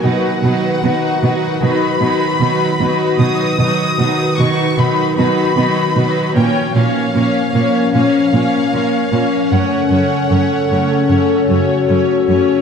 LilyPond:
<<
  \new Staff \with { instrumentName = "Violin section" } { \time 4/4 \key b \mixolydian \tempo 4 = 76 fis''2 b''2 | dis'''4. cis'''8 b''8 b''4. | g''8 eis''4. eis''2 | fis''2. r4 | }
  \new Staff \with { instrumentName = "Violin section" } { \time 4/4 \key b \mixolydian <fis' b'>8 <fis' b'>8 <fis' b'>8 <fis' b'>8 <fis' b'>8 <fis' b'>8 <fis' b'>8 <fis' b'>8 | <fis' b'>8 <fis' b'>8 <fis' b'>8 <fis' b'>8 <fis' b'>8 <fis' b'>8 <fis' b'>8 <fis' b'>8 | <cis' cis''>8 <cis' cis''>8 <cis' cis''>8 <cis' cis''>8 <cis' cis''>8 <cis' cis''>8 <cis' cis''>8 <cis' cis''>8 | <cis' cis''>8 <cis' cis''>8 <cis' cis''>8 <cis' cis''>8 <cis' cis''>8 <cis' cis''>8 <cis' cis''>8 <cis' cis''>8 | }
  \new Staff \with { instrumentName = "French horn section" } { \time 4/4 \key b \mixolydian r1 | r1 | r1 | r2 r8 fis'4. | }
  \new Staff \with { instrumentName = "Ambient pad" } { \time 4/4 \key b \mixolydian << { <dis' b'>1 | <dis' b'>1 | <cis' cis''>1~ | <cis' cis''>1 | } \\ { <dis fis'>1 | <dis fis'>1 | <eis ais'>1 | <cis a'>1 | } >> }
  \new Staff \with { instrumentName = "Viola section" } { \time 4/4 \key b \mixolydian <fis dis'>8 <fis dis'>8 <fis dis'>8 <fis dis'>8 <fis dis'>8 <fis dis'>8 <fis dis'>8 <fis dis'>8 | <fis dis'>8 <fis dis'>8 <fis dis'>8 <fis dis'>8 <fis dis'>8 <fis dis'>8 <fis dis'>8 <fis dis'>8 | <ais cis'>8 <ais cis'>8 <ais cis'>8 <ais cis'>8 <ais cis'>8 <ais cis'>8 <ais cis'>8 <ais cis'>8 | <a cis'>8 <a cis'>8 <a cis'>8 <a cis'>8 <a cis'>8 <a cis'>8 <a cis'>8 <a cis'>8 | }
  \new Staff \with { instrumentName = "Cello section" } { \clef bass \time 4/4 \key b \mixolydian b,8 b,8 b,8 b,8 b,8 b,8 b,8 b,8 | b,8 b,8 b,8 b,8 b,8 b,8 b,8 b,8 | ais,8 ais,8 ais,8 ais,8 ais,8 ais,8 ais,8 ais,8 | fis,8 fis,8 fis,8 fis,8 fis,8 fis,8 fis,8 fis,8 | }
>>